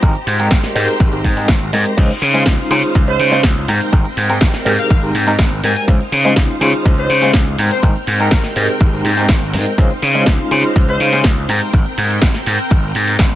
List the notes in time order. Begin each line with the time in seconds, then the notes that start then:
Already playing: G4 C5 A#5
0.02 G#1 G#3 C4 D#4 G4 A#4, kick, closed hi-hat, shaker
0.15 closed hi-hat, shaker
0.27 G#2, open hi-hat, shaker
0.39 G#3 C4 D#4 G4 A#4, closed hi-hat, shaker
0.51 G#1, kick, snare, closed hi-hat, shaker
0.63 snare, closed hi-hat, shaker
0.75 G#2 G#3 C4 D#4 G4 A#4, open hi-hat, shaker
0.88 closed hi-hat, shaker
1.00 G#1, kick, closed hi-hat, shaker
1.12 G#3 C4 D#4 G4 A#4, closed hi-hat, shaker
1.24 G#2, kick, open hi-hat, shaker
1.37 G#3 C4 D#4 G4 A#4, closed hi-hat, shaker
1.48 G#1, kick, snare, closed hi-hat, shaker
1.61 closed hi-hat, shaker
1.73 G#2 G#3 C4 D#4 G4 A#4, open hi-hat, shaker
1.86 closed hi-hat, shaker
1.97 C#2 G#3 C#4 D#4 F4 C5 F5, kick, closed hi-hat, crash, tambourine, shaker
2.10 closed hi-hat, shaker
2.22 C#3, open hi-hat, tambourine, shaker
2.34 G#3 C#4 D#4 F4 C5, closed hi-hat, tambourine, shaker
2.46 C#2, kick, snare, closed hi-hat, shaker
2.59 closed hi-hat, shaker
2.70 C#3 G#3 C#4 D#4 F4 C5, open hi-hat, tambourine, shaker
2.83 closed hi-hat, tambourine, shaker
2.95 C#2, kick, closed hi-hat, shaker
3.07 G#3 C#4 D#4 F4 C5, closed hi-hat, shaker
3.19 C#3, open hi-hat, tambourine, shaker
3.32 G#3 C#4 D#4 F4 C5, snare, closed hi-hat, tambourine, shaker
3.43 C#2, kick, snare, closed hi-hat, tambourine, shaker
3.57 closed hi-hat, shaker
3.68 G#2 G#3 C4 D#4 G4 A#4 G5, open hi-hat, tambourine, shaker
3.81 closed hi-hat, tambourine, shaker
3.92 G#1 G#3 C4 D#4 G4 A#4, kick, closed hi-hat, tambourine, shaker
4.05 closed hi-hat, shaker
4.17 G#2, open hi-hat, tambourine, shaker
4.29 G#3 C4 D#4 G4 A#4, closed hi-hat, tambourine, shaker
4.41 G#1, kick, snare, closed hi-hat, shaker
4.54 snare, closed hi-hat, shaker
4.65 G#2 G#3 C4 D#4 G4 A#4, open hi-hat, tambourine, shaker
4.78 F5, closed hi-hat, tambourine, shaker
4.90 G#1 F5, kick, closed hi-hat, tambourine, shaker
5.02 G#3 C4 D#4 G4 A#4, closed hi-hat, shaker
5.14 G#2, open hi-hat, tambourine, shaker
5.27 G#3 C4 D#4 G4 A#4, closed hi-hat, tambourine, shaker
5.39 G#1, kick, snare, closed hi-hat, shaker
5.52 closed hi-hat, shaker
5.63 G#2 G#3 C4 D#4 G4 A#4 G#5, open hi-hat, tambourine, shaker
5.76 G#5, closed hi-hat, tambourine, shaker
5.88 C#2 G#3 C#4 D#4 F4 C5 F5, kick, closed hi-hat, shaker
6.01 closed hi-hat, shaker
6.12 C#3, open hi-hat, tambourine, shaker
6.25 G#3 C#4 D#4 F4 C5, closed hi-hat, tambourine, shaker
6.36 C#2, kick, snare, closed hi-hat, shaker
6.50 closed hi-hat, shaker
6.61 C#3 G#3 C#4 D#4 F4 C5, open hi-hat, tambourine, shaker
6.74 closed hi-hat, tambourine, shaker
6.85 C#2, kick, closed hi-hat, tambourine, shaker
6.98 G#3 C#4 D#4 F4 C5, closed hi-hat, shaker
7.10 C#3, open hi-hat, tambourine, shaker
7.22 G#3 C#4 D#4 F4 C5, snare, closed hi-hat, tambourine, shaker
7.33 C#2, kick, snare, closed hi-hat, shaker
7.47 closed hi-hat, shaker
7.58 G#2 G#3 C4 D#4 G4 A#4 G5, open hi-hat, tambourine, shaker
7.71 C5, closed hi-hat, tambourine, shaker
7.83 G#1 G#3 C4 D#4 G4 A#4, kick, closed hi-hat, shaker
7.96 closed hi-hat, shaker
8.07 G#2, open hi-hat, tambourine, shaker
8.19 G#3 C4 D#4 G4 A#4, closed hi-hat, tambourine, shaker
8.31 G#1 A#4, kick, snare, closed hi-hat, shaker
8.44 snare, closed hi-hat, shaker
8.56 G#2 G#3 C4 D#4 G4 A#4, open hi-hat, tambourine, shaker
8.68 closed hi-hat, tambourine, shaker
8.80 G#1, kick, closed hi-hat, tambourine, shaker
8.93 G#3 C4 D#4 G4 A#4, closed hi-hat, shaker
9.05 G#2, open hi-hat, tambourine, shaker
9.17 G#3 C4 D#4 G4 A#4, closed hi-hat, tambourine, shaker
9.29 G#1, kick, snare, closed hi-hat, tambourine, shaker
9.42 closed hi-hat, shaker
9.53 G#2 G#3 C4 D#4 G4 A#4, open hi-hat, tambourine, shaker
9.66 closed hi-hat, tambourine, shaker
9.78 C#2 G#3 C#4 D#4 F4 C5 F5, kick, closed hi-hat, tambourine, shaker
9.91 closed hi-hat, shaker
10.02 C#3, open hi-hat, tambourine, shaker
10.15 G#3 C#4 D#4 F4 C5, closed hi-hat, tambourine, shaker
10.26 C#2, kick, snare, closed hi-hat, shaker
10.39 closed hi-hat, shaker
10.51 C#3 G#3 C#4 D#4 F4 C5, open hi-hat, tambourine, shaker
10.64 closed hi-hat, tambourine, shaker
10.76 C#2, kick, closed hi-hat, shaker
10.88 G#3 C#4 D#4 F4 C5, closed hi-hat, shaker
11.00 C#3, open hi-hat, tambourine, shaker
11.12 G#3 C#4 D#4 F4 C5, snare, closed hi-hat, tambourine, shaker
11.24 C#2, kick, snare, closed hi-hat, tambourine, shaker
11.37 closed hi-hat, shaker
11.49 G#2 G#3 C4 D#4 G4 A#4 G5, open hi-hat, tambourine, shaker
11.62 closed hi-hat, tambourine, shaker
11.73 G#1, kick, closed hi-hat, shaker
11.86 closed hi-hat, shaker
11.98 G#2, open hi-hat, tambourine, shaker
12.10 closed hi-hat, tambourine, shaker
12.22 G#1, kick, snare, closed hi-hat, shaker
12.34 snare, closed hi-hat, shaker
12.46 G#2, open hi-hat, tambourine, shaker
12.59 closed hi-hat, tambourine, shaker
12.71 G#1, kick, closed hi-hat, shaker
12.83 closed hi-hat, shaker
12.95 G#2, open hi-hat, tambourine, shaker
13.07 closed hi-hat, tambourine, shaker
13.19 G#1, kick, snare, closed hi-hat, shaker
13.32 closed hi-hat